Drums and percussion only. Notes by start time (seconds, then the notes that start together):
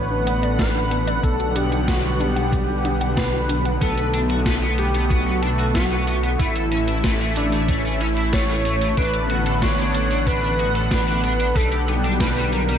0.27 closed hi-hat
0.43 closed hi-hat
0.59 kick, snare, closed hi-hat
0.91 closed hi-hat
1.07 closed hi-hat
1.23 kick, closed hi-hat
1.40 closed hi-hat
1.56 closed hi-hat
1.72 closed hi-hat
1.88 kick, snare, closed hi-hat
2.20 closed hi-hat
2.37 closed hi-hat
2.52 kick, closed hi-hat
2.85 closed hi-hat
3.01 closed hi-hat
3.17 kick, snare, closed hi-hat
3.49 closed hi-hat
3.65 closed hi-hat
3.81 kick, closed hi-hat
3.98 closed hi-hat
4.14 closed hi-hat
4.30 closed hi-hat
4.46 kick, snare, closed hi-hat
4.78 closed hi-hat
4.94 closed hi-hat
5.10 kick, closed hi-hat
5.43 closed hi-hat
5.59 closed hi-hat
5.75 kick, snare, closed hi-hat
6.07 closed hi-hat
6.23 closed hi-hat
6.39 kick, closed hi-hat
6.56 closed hi-hat
6.72 closed hi-hat
6.88 closed hi-hat
7.04 kick, snare, closed hi-hat
7.36 closed hi-hat
7.52 closed hi-hat
7.68 kick, closed hi-hat
8.01 closed hi-hat
8.17 closed hi-hat
8.33 kick, snare, closed hi-hat
8.65 closed hi-hat
8.81 closed hi-hat
8.97 kick, closed hi-hat
9.14 closed hi-hat
9.30 closed hi-hat
9.46 closed hi-hat
9.62 kick, snare, closed hi-hat
9.94 closed hi-hat
10.11 closed hi-hat
10.27 kick, closed hi-hat
10.59 closed hi-hat
10.75 closed hi-hat
10.91 kick, snare, closed hi-hat
11.24 closed hi-hat
11.40 closed hi-hat
11.56 kick, closed hi-hat
11.72 closed hi-hat
11.88 closed hi-hat
12.04 closed hi-hat
12.20 kick, snare, closed hi-hat
12.53 closed hi-hat
12.69 closed hi-hat